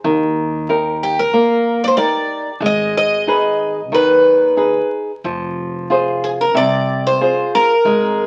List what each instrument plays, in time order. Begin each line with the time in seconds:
0.04 upright bass D#2, nylon-string guitar D#3
0.69 nylon-string guitar D#4 G4 A#4
1.03 twelve-string acoustic guitar G4
1.19 twelve-string acoustic guitar A#4
1.32 upright bass A#1, nylon-string guitar A#3
1.84 twelve-string acoustic guitar C5 D5
1.97 nylon-string guitar D#4 G4 A#4, twelve-string acoustic guitar D5
2.60 upright bass G#1, nylon-string guitar G#3
2.66 twelve-string acoustic guitar D#5
2.97 twelve-string acoustic guitar D#5
3.27 nylon-string guitar D#4 G#4 B4
3.91 upright bass D#2, nylon-string guitar D#3, twelve-string acoustic guitar B4
4.57 nylon-string guitar D#4 G#4 B4
5.24 upright bass F1, nylon-string guitar F3
5.90 nylon-string guitar F4 G#4 C5
6.24 twelve-string acoustic guitar G#4
6.41 twelve-string acoustic guitar A#4
6.54 upright bass C2, nylon-string guitar C3, twelve-string acoustic guitar D5
7.07 twelve-string acoustic guitar C5
7.21 nylon-string guitar F4 G#4 C5
7.55 twelve-string acoustic guitar A#4
7.85 upright bass G#1, nylon-string guitar G#3